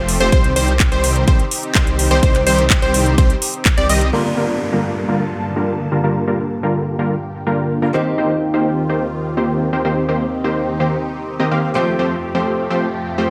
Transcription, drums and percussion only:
0.09 open hi-hat
0.20 closed hi-hat
0.32 kick, closed hi-hat
0.44 closed hi-hat
0.56 open hi-hat
0.68 closed hi-hat
0.80 kick, clap, closed hi-hat
0.92 closed hi-hat
1.04 open hi-hat
1.16 closed hi-hat
1.28 kick, closed hi-hat
1.39 closed hi-hat
1.51 open hi-hat
1.63 closed hi-hat
1.75 kick, clap, closed hi-hat
1.87 closed hi-hat
1.99 open hi-hat
2.11 closed hi-hat
2.23 kick, closed hi-hat
2.34 clap, closed hi-hat
2.47 open hi-hat
2.58 closed hi-hat
2.70 kick, clap, closed hi-hat
2.82 closed hi-hat
2.94 open hi-hat
3.06 closed hi-hat
3.18 kick, closed hi-hat
3.30 closed hi-hat
3.42 open hi-hat
3.54 closed hi-hat
3.65 kick, clap, closed hi-hat
3.78 closed hi-hat
3.89 open hi-hat
4.01 closed hi-hat

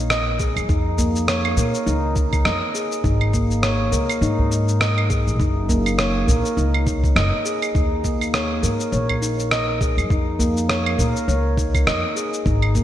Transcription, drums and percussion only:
0.10 cross-stick, shaker
0.40 kick, shaker
0.57 claves, shaker
0.69 kick, shaker
0.98 udu, shaker
1.16 shaker
1.28 cross-stick, shaker
1.45 claves
1.57 udu, shaker
1.75 shaker
1.87 shaker
2.16 kick, shaker
2.33 kick, claves, shaker
2.45 cross-stick, shaker
2.75 shaker
2.92 shaker
3.04 kick, shaker
3.21 claves
3.34 kick, shaker
3.51 shaker
3.63 cross-stick, shaker
3.92 udu, shaker
4.10 claves, shaker
4.22 shaker
4.39 udu
4.52 shaker
4.69 shaker
4.81 cross-stick, shaker
4.98 claves
5.10 kick, shaker
5.28 shaker
5.40 kick, shaker
5.69 udu, shaker
5.86 claves, shaker
5.99 cross-stick, shaker
6.28 udu, shaker
6.46 shaker
6.58 shaker
6.74 claves
6.87 kick, shaker
7.04 kick, shaker
7.16 cross-stick, shaker
7.46 shaker
7.62 claves, shaker
7.75 kick, shaker
8.04 kick, shaker
8.21 claves, shaker
8.34 cross-stick, shaker
8.63 udu, shaker
8.80 shaker
8.93 shaker
9.09 udu, claves
9.23 shaker
9.40 shaker
9.51 cross-stick, shaker
9.81 kick, shaker
9.98 claves, shaker
10.10 kick, shaker
10.39 udu, shaker
10.57 shaker
10.69 cross-stick, shaker
10.86 claves
10.99 udu, shaker
11.17 shaker
11.29 shaker
11.58 kick, shaker
11.75 kick, claves, shaker
11.87 cross-stick, shaker
12.17 shaker
12.34 shaker
12.46 kick, shaker
12.62 claves
12.75 kick, shaker

